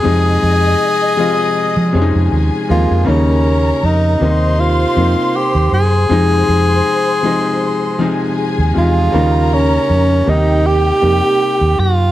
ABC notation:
X:1
M:4/4
L:1/16
Q:"Swing 16ths" 1/4=79
K:Fm
V:1 name="String section"
[ee']8- [ee']2 [Aa]6 | [Bb]6 [cc']8- [cc']2 | [cc']8- [cc']2 [Aa]6 | [Bb]6 [Gg]8- [Gg]2 |]
V:2 name="Tenor saxophone"
A12 z2 F2 | D4 E4 F4 G2 A2- | A12 z2 F2- | F2 D4 E2 G6 F2 |]
V:3 name="Grand piano" clef=bass
[C,F,A,E]4- [C,F,A,E] z [C,F,A,F]4 [C,F,A,DE]4 [C,F,A,B,]2 | [D,G,B,E]4- [D,G,B,E] z [C,G,B,E]4 [C,G,B,E]4- [C,G,B,E] z | [C,F,A,E]4- [C,F,A,E] z [C,F,A,E]4 [C,F,A,E]4 [C,A,EF]2 | [D,G,B,E]4- [D,G,B,E] z [C,G,B,E]4 [C,G,B,E]4- [C,G,B,E] z |]
V:4 name="Fingered electric bass" clef=bass
F,,2 F,,2 z4 z F, F,, F,, E,, z E,, F,, | E,,4 F,,2 E,,4 F,, z2 E,, _G,,2 | F,,2 F,,2 z8 z E,, =E,,2 | E,,4 F,,2 E,,4 F,, z2 E,, _G,,2 |]